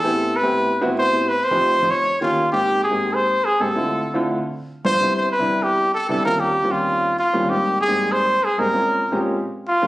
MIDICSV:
0, 0, Header, 1, 3, 480
1, 0, Start_track
1, 0, Key_signature, -4, "major"
1, 0, Tempo, 310398
1, 71, Time_signature, 4, 2, 24, 8
1, 15265, End_track
2, 0, Start_track
2, 0, Title_t, "Trumpet"
2, 0, Program_c, 0, 56
2, 0, Note_on_c, 0, 69, 100
2, 565, Note_on_c, 0, 71, 97
2, 588, Note_off_c, 0, 69, 0
2, 1273, Note_off_c, 0, 71, 0
2, 1516, Note_on_c, 0, 72, 97
2, 1989, Note_on_c, 0, 71, 93
2, 2012, Note_off_c, 0, 72, 0
2, 2226, Note_on_c, 0, 72, 108
2, 2250, Note_off_c, 0, 71, 0
2, 2951, Note_on_c, 0, 73, 103
2, 2974, Note_off_c, 0, 72, 0
2, 3421, Note_off_c, 0, 73, 0
2, 3430, Note_on_c, 0, 65, 81
2, 3868, Note_off_c, 0, 65, 0
2, 3898, Note_on_c, 0, 67, 92
2, 4341, Note_off_c, 0, 67, 0
2, 4385, Note_on_c, 0, 68, 90
2, 4857, Note_on_c, 0, 72, 106
2, 4880, Note_off_c, 0, 68, 0
2, 5338, Note_on_c, 0, 68, 91
2, 5362, Note_off_c, 0, 72, 0
2, 5585, Note_on_c, 0, 69, 92
2, 5608, Note_off_c, 0, 68, 0
2, 6538, Note_off_c, 0, 69, 0
2, 7508, Note_on_c, 0, 72, 112
2, 7948, Note_off_c, 0, 72, 0
2, 7987, Note_on_c, 0, 72, 95
2, 8204, Note_off_c, 0, 72, 0
2, 8225, Note_on_c, 0, 71, 93
2, 8705, Note_on_c, 0, 67, 99
2, 8728, Note_off_c, 0, 71, 0
2, 9181, Note_off_c, 0, 67, 0
2, 9194, Note_on_c, 0, 69, 98
2, 9409, Note_off_c, 0, 69, 0
2, 9431, Note_on_c, 0, 69, 96
2, 9648, Note_off_c, 0, 69, 0
2, 9666, Note_on_c, 0, 70, 98
2, 9898, Note_on_c, 0, 67, 91
2, 9921, Note_off_c, 0, 70, 0
2, 10383, Note_on_c, 0, 65, 91
2, 10407, Note_off_c, 0, 67, 0
2, 11103, Note_off_c, 0, 65, 0
2, 11114, Note_on_c, 0, 65, 82
2, 11594, Note_on_c, 0, 67, 88
2, 11618, Note_off_c, 0, 65, 0
2, 12069, Note_off_c, 0, 67, 0
2, 12078, Note_on_c, 0, 68, 93
2, 12563, Note_on_c, 0, 72, 104
2, 12586, Note_off_c, 0, 68, 0
2, 13054, Note_on_c, 0, 68, 86
2, 13077, Note_off_c, 0, 72, 0
2, 13287, Note_on_c, 0, 70, 95
2, 13310, Note_off_c, 0, 68, 0
2, 14239, Note_off_c, 0, 70, 0
2, 14971, Note_on_c, 0, 65, 91
2, 15265, Note_off_c, 0, 65, 0
2, 15265, End_track
3, 0, Start_track
3, 0, Title_t, "Grand piano"
3, 0, Program_c, 1, 0
3, 61, Note_on_c, 1, 45, 76
3, 65, Note_on_c, 1, 59, 78
3, 69, Note_on_c, 1, 60, 72
3, 70, Note_on_c, 1, 64, 69
3, 70, Note_on_c, 1, 67, 88
3, 484, Note_off_c, 1, 45, 0
3, 486, Note_off_c, 1, 59, 0
3, 488, Note_off_c, 1, 60, 0
3, 488, Note_off_c, 1, 64, 0
3, 488, Note_off_c, 1, 67, 0
3, 663, Note_on_c, 1, 45, 84
3, 663, Note_on_c, 1, 59, 77
3, 669, Note_on_c, 1, 60, 74
3, 670, Note_on_c, 1, 64, 74
3, 674, Note_on_c, 1, 67, 90
3, 1083, Note_off_c, 1, 45, 0
3, 1083, Note_off_c, 1, 59, 0
3, 1086, Note_off_c, 1, 60, 0
3, 1087, Note_off_c, 1, 64, 0
3, 1088, Note_off_c, 1, 67, 0
3, 1252, Note_on_c, 1, 45, 100
3, 1255, Note_on_c, 1, 59, 100
3, 1260, Note_on_c, 1, 60, 100
3, 1264, Note_on_c, 1, 64, 93
3, 1269, Note_on_c, 1, 66, 112
3, 1592, Note_off_c, 1, 45, 0
3, 1594, Note_off_c, 1, 59, 0
3, 1596, Note_off_c, 1, 60, 0
3, 1599, Note_off_c, 1, 64, 0
3, 1601, Note_off_c, 1, 66, 0
3, 1733, Note_on_c, 1, 45, 76
3, 1739, Note_on_c, 1, 59, 63
3, 1742, Note_on_c, 1, 60, 73
3, 1743, Note_on_c, 1, 64, 70
3, 1746, Note_on_c, 1, 67, 74
3, 1976, Note_off_c, 1, 45, 0
3, 1979, Note_off_c, 1, 59, 0
3, 1980, Note_off_c, 1, 60, 0
3, 1981, Note_off_c, 1, 64, 0
3, 1982, Note_off_c, 1, 67, 0
3, 2331, Note_on_c, 1, 41, 81
3, 2336, Note_on_c, 1, 57, 71
3, 2337, Note_on_c, 1, 60, 74
3, 2340, Note_on_c, 1, 63, 75
3, 2341, Note_on_c, 1, 67, 98
3, 2669, Note_off_c, 1, 41, 0
3, 2671, Note_off_c, 1, 57, 0
3, 2672, Note_off_c, 1, 60, 0
3, 2674, Note_off_c, 1, 63, 0
3, 2674, Note_off_c, 1, 67, 0
3, 2818, Note_on_c, 1, 41, 77
3, 2823, Note_on_c, 1, 57, 63
3, 2825, Note_on_c, 1, 60, 67
3, 2826, Note_on_c, 1, 63, 74
3, 2827, Note_on_c, 1, 65, 78
3, 2936, Note_off_c, 1, 41, 0
3, 2939, Note_off_c, 1, 57, 0
3, 2940, Note_off_c, 1, 60, 0
3, 2941, Note_off_c, 1, 63, 0
3, 2941, Note_off_c, 1, 65, 0
3, 3416, Note_on_c, 1, 51, 79
3, 3419, Note_on_c, 1, 58, 75
3, 3423, Note_on_c, 1, 61, 74
3, 3425, Note_on_c, 1, 65, 66
3, 3428, Note_on_c, 1, 67, 83
3, 3750, Note_off_c, 1, 51, 0
3, 3751, Note_off_c, 1, 58, 0
3, 3753, Note_off_c, 1, 61, 0
3, 3754, Note_off_c, 1, 65, 0
3, 3756, Note_off_c, 1, 67, 0
3, 3903, Note_on_c, 1, 44, 67
3, 3904, Note_on_c, 1, 58, 62
3, 3907, Note_on_c, 1, 60, 64
3, 3908, Note_on_c, 1, 63, 63
3, 3911, Note_on_c, 1, 67, 81
3, 4317, Note_off_c, 1, 44, 0
3, 4318, Note_off_c, 1, 58, 0
3, 4319, Note_off_c, 1, 60, 0
3, 4319, Note_off_c, 1, 63, 0
3, 4321, Note_off_c, 1, 67, 0
3, 4490, Note_on_c, 1, 44, 69
3, 4495, Note_on_c, 1, 58, 58
3, 4496, Note_on_c, 1, 60, 60
3, 4500, Note_on_c, 1, 67, 75
3, 4501, Note_on_c, 1, 63, 61
3, 5162, Note_off_c, 1, 44, 0
3, 5165, Note_off_c, 1, 58, 0
3, 5165, Note_off_c, 1, 60, 0
3, 5167, Note_off_c, 1, 67, 0
3, 5168, Note_off_c, 1, 63, 0
3, 5568, Note_on_c, 1, 44, 77
3, 5571, Note_on_c, 1, 58, 67
3, 5573, Note_on_c, 1, 60, 66
3, 5575, Note_on_c, 1, 63, 71
3, 5580, Note_on_c, 1, 67, 85
3, 5737, Note_off_c, 1, 44, 0
3, 5739, Note_off_c, 1, 58, 0
3, 5740, Note_off_c, 1, 60, 0
3, 5741, Note_off_c, 1, 63, 0
3, 5744, Note_off_c, 1, 67, 0
3, 5804, Note_on_c, 1, 50, 70
3, 5807, Note_on_c, 1, 57, 64
3, 5810, Note_on_c, 1, 60, 64
3, 5813, Note_on_c, 1, 64, 64
3, 5813, Note_on_c, 1, 65, 80
3, 6228, Note_off_c, 1, 50, 0
3, 6229, Note_off_c, 1, 57, 0
3, 6231, Note_off_c, 1, 60, 0
3, 6232, Note_off_c, 1, 64, 0
3, 6232, Note_off_c, 1, 65, 0
3, 6401, Note_on_c, 1, 50, 82
3, 6406, Note_on_c, 1, 57, 82
3, 6409, Note_on_c, 1, 64, 76
3, 6410, Note_on_c, 1, 60, 78
3, 6414, Note_on_c, 1, 65, 94
3, 6767, Note_off_c, 1, 50, 0
3, 6769, Note_off_c, 1, 57, 0
3, 6770, Note_off_c, 1, 64, 0
3, 6771, Note_off_c, 1, 60, 0
3, 6773, Note_off_c, 1, 65, 0
3, 7495, Note_on_c, 1, 43, 78
3, 7498, Note_on_c, 1, 57, 70
3, 7502, Note_on_c, 1, 59, 76
3, 7502, Note_on_c, 1, 62, 79
3, 7503, Note_on_c, 1, 65, 86
3, 7662, Note_off_c, 1, 43, 0
3, 7664, Note_off_c, 1, 57, 0
3, 7666, Note_off_c, 1, 59, 0
3, 7666, Note_off_c, 1, 62, 0
3, 7666, Note_off_c, 1, 65, 0
3, 7735, Note_on_c, 1, 48, 75
3, 7737, Note_on_c, 1, 55, 69
3, 7739, Note_on_c, 1, 59, 63
3, 7740, Note_on_c, 1, 62, 61
3, 7746, Note_on_c, 1, 64, 80
3, 8155, Note_off_c, 1, 48, 0
3, 8156, Note_off_c, 1, 55, 0
3, 8157, Note_off_c, 1, 59, 0
3, 8157, Note_off_c, 1, 62, 0
3, 8161, Note_off_c, 1, 64, 0
3, 8340, Note_on_c, 1, 48, 79
3, 8340, Note_on_c, 1, 55, 68
3, 8340, Note_on_c, 1, 59, 62
3, 8345, Note_on_c, 1, 62, 66
3, 8350, Note_on_c, 1, 64, 87
3, 9010, Note_off_c, 1, 55, 0
3, 9011, Note_off_c, 1, 48, 0
3, 9011, Note_off_c, 1, 59, 0
3, 9013, Note_off_c, 1, 62, 0
3, 9016, Note_off_c, 1, 64, 0
3, 9414, Note_on_c, 1, 48, 86
3, 9417, Note_on_c, 1, 55, 73
3, 9419, Note_on_c, 1, 59, 75
3, 9423, Note_on_c, 1, 62, 72
3, 9424, Note_on_c, 1, 64, 82
3, 9584, Note_off_c, 1, 48, 0
3, 9585, Note_off_c, 1, 55, 0
3, 9586, Note_off_c, 1, 59, 0
3, 9588, Note_off_c, 1, 62, 0
3, 9589, Note_off_c, 1, 64, 0
3, 9657, Note_on_c, 1, 39, 72
3, 9660, Note_on_c, 1, 55, 58
3, 9661, Note_on_c, 1, 58, 68
3, 9663, Note_on_c, 1, 60, 66
3, 9667, Note_on_c, 1, 61, 60
3, 9672, Note_on_c, 1, 65, 79
3, 10078, Note_off_c, 1, 39, 0
3, 10079, Note_off_c, 1, 55, 0
3, 10080, Note_off_c, 1, 58, 0
3, 10081, Note_off_c, 1, 60, 0
3, 10083, Note_off_c, 1, 61, 0
3, 10085, Note_off_c, 1, 65, 0
3, 10253, Note_on_c, 1, 39, 66
3, 10255, Note_on_c, 1, 55, 63
3, 10259, Note_on_c, 1, 60, 65
3, 10260, Note_on_c, 1, 58, 61
3, 10261, Note_on_c, 1, 61, 65
3, 10263, Note_on_c, 1, 65, 77
3, 10929, Note_off_c, 1, 39, 0
3, 10931, Note_off_c, 1, 55, 0
3, 10932, Note_off_c, 1, 60, 0
3, 10933, Note_off_c, 1, 58, 0
3, 10933, Note_off_c, 1, 61, 0
3, 10934, Note_off_c, 1, 65, 0
3, 11341, Note_on_c, 1, 55, 75
3, 11343, Note_on_c, 1, 39, 80
3, 11345, Note_on_c, 1, 58, 75
3, 11348, Note_on_c, 1, 60, 65
3, 11348, Note_on_c, 1, 65, 84
3, 11351, Note_on_c, 1, 61, 68
3, 11510, Note_off_c, 1, 39, 0
3, 11510, Note_off_c, 1, 55, 0
3, 11511, Note_off_c, 1, 58, 0
3, 11513, Note_off_c, 1, 60, 0
3, 11513, Note_off_c, 1, 65, 0
3, 11514, Note_off_c, 1, 61, 0
3, 11581, Note_on_c, 1, 44, 65
3, 11586, Note_on_c, 1, 55, 64
3, 11586, Note_on_c, 1, 58, 63
3, 11591, Note_on_c, 1, 60, 63
3, 11591, Note_on_c, 1, 63, 69
3, 12002, Note_off_c, 1, 44, 0
3, 12005, Note_off_c, 1, 55, 0
3, 12005, Note_off_c, 1, 58, 0
3, 12007, Note_off_c, 1, 60, 0
3, 12007, Note_off_c, 1, 63, 0
3, 12183, Note_on_c, 1, 44, 75
3, 12184, Note_on_c, 1, 55, 66
3, 12184, Note_on_c, 1, 58, 63
3, 12190, Note_on_c, 1, 60, 69
3, 12191, Note_on_c, 1, 63, 75
3, 12857, Note_off_c, 1, 44, 0
3, 12858, Note_off_c, 1, 55, 0
3, 12858, Note_off_c, 1, 58, 0
3, 12860, Note_off_c, 1, 60, 0
3, 12861, Note_off_c, 1, 63, 0
3, 13266, Note_on_c, 1, 44, 77
3, 13271, Note_on_c, 1, 55, 65
3, 13273, Note_on_c, 1, 58, 73
3, 13278, Note_on_c, 1, 60, 69
3, 13278, Note_on_c, 1, 63, 88
3, 13435, Note_off_c, 1, 44, 0
3, 13437, Note_off_c, 1, 55, 0
3, 13438, Note_off_c, 1, 58, 0
3, 13441, Note_off_c, 1, 60, 0
3, 13441, Note_off_c, 1, 63, 0
3, 13502, Note_on_c, 1, 46, 72
3, 13505, Note_on_c, 1, 56, 66
3, 13508, Note_on_c, 1, 60, 67
3, 13511, Note_on_c, 1, 61, 63
3, 13513, Note_on_c, 1, 65, 70
3, 13926, Note_off_c, 1, 46, 0
3, 13927, Note_off_c, 1, 56, 0
3, 13929, Note_off_c, 1, 60, 0
3, 13930, Note_off_c, 1, 61, 0
3, 13931, Note_off_c, 1, 65, 0
3, 14102, Note_on_c, 1, 46, 88
3, 14103, Note_on_c, 1, 56, 77
3, 14104, Note_on_c, 1, 60, 77
3, 14111, Note_on_c, 1, 61, 74
3, 14113, Note_on_c, 1, 67, 95
3, 14466, Note_off_c, 1, 46, 0
3, 14467, Note_off_c, 1, 56, 0
3, 14467, Note_off_c, 1, 60, 0
3, 14470, Note_off_c, 1, 61, 0
3, 14471, Note_off_c, 1, 67, 0
3, 15186, Note_on_c, 1, 39, 82
3, 15189, Note_on_c, 1, 55, 74
3, 15191, Note_on_c, 1, 58, 72
3, 15194, Note_on_c, 1, 61, 73
3, 15196, Note_on_c, 1, 65, 91
3, 15265, Note_off_c, 1, 39, 0
3, 15265, Note_off_c, 1, 55, 0
3, 15265, Note_off_c, 1, 58, 0
3, 15265, Note_off_c, 1, 61, 0
3, 15265, Note_off_c, 1, 65, 0
3, 15265, End_track
0, 0, End_of_file